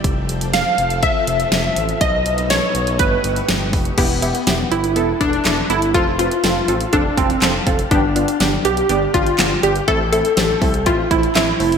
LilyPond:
<<
  \new Staff \with { instrumentName = "Analog polysynth" } { \time 4/4 \key e \phrygian \tempo 4 = 122 r4 f''4 e''2 | dis''4 des''4 b'4. r8 | b4. e'4 d'4 e'8 | f'8 f'4. d'8 c'4 r8 |
d'4. g'4 f'4 g'8 | a'8 a'4. f'8 e'8 e'4 | }
  \new Staff \with { instrumentName = "Analog polysynth" } { \time 4/4 \key e \phrygian r1 | r1 | <b e' g'>8 <b e' g'>8 <b e' g'>8 <b e' g'>8 <b e' a'>8 <b e' a'>8 <b e' a'>8 <b e' a'>8 | <c' f' a'>8 <c' f' b'>8 <c' f' a'>8 <c' f' a'>8 <c' f' a'>8 <c' f' a'>8 <c' f' a'>8 <c' f' a'>8 |
<b d' g'>8 <b d' f'>8 <b d' g'>8 <b d' g'>8 <b d' g'>8 <b d' g'>8 <b d' g'>8 <b d' g'>8 | <a c' e'>8 <a c' e'>8 <a c' g'>8 <a c' e'>8 <a c' e'>8 <a c' e'>8 <a c' e'>8 <a c' e'>8 | }
  \new Staff \with { instrumentName = "String machine" } { \time 4/4 \key e \phrygian << { a'1 | dis'2 g'2 | r1 | r1 |
r1 | r1 | } \\ { <f c'>1 | <a b>1 | r1 | r1 |
r1 | r1 | } >> }
  \new Staff \with { instrumentName = "Analog synth bass" } { \clef bass \time 4/4 \key e \phrygian f,,4~ f,,16 r16 f,,8. r16 f,,8 f,,8 a,,8 | b,,4~ b,,16 r16 b,,8 g,,8 g,,8 g,,8 f,,8 | e,,4 e,,8 g,,8 e,,8 e,,8 e,,8 g,,8 | f,,4 f,,8 a,,8 f,,8 f,,8 f,,8 f,,8 |
g,,4 g,,8 b,,8 g,,8 g,,8 g,,8 g,,8 | a,,4 a,,8 c,8 a,,8 a,,8 a,,8 f,,8 | }
  \new DrumStaff \with { instrumentName = "Drums" } \drummode { \time 4/4 <hh bd>8 hh16 hh16 <hh sn>8 hh16 hh16 <hh bd>8 hh16 hh16 <hh sn>8 hh16 hh16 | <hh bd>8 hh16 hh16 <hh sn>8 hh16 hh16 <hh bd>8 hh16 hh16 <hh sn>8 <hho bd>16 hh16 | <cymc hh bd>8 hh16 hh16 <hh sn>8 hh16 hh16 hh8 <hh bd>16 hh16 <hc hh sn>8 hh16 hh16 | <hh bd>8 hh16 hh16 <hh sn>8 hh16 hh16 <hh bd>8 <hh bd>16 hh16 <hc hh sn>8 <hh bd>16 hh16 |
<hh bd>8 hh16 hh16 <hh sn>8 hh16 hh16 hh8 <hh bd>16 hh16 <hc hh sn>8 hh16 hh16 | <hh bd>8 hh16 hh16 <hh sn>8 <hho bd>16 hh16 <hh bd>8 <hh bd>16 hh16 <hc hh sn>8 hho16 hh16 | }
>>